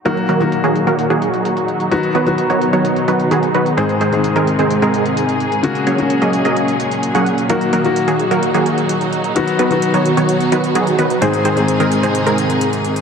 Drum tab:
HH |xxxxxxxxxxxxxxxx|xxxxxxxxxxxxxxxx|xxxxxxxxxxxxxxxx|xxxxxxxxxxxxxxxx|

HH |xxxxxxxxxxxxxxxx|xxxxxxxxxxxxxxxx|xxxxxxxxxxxxxxxx|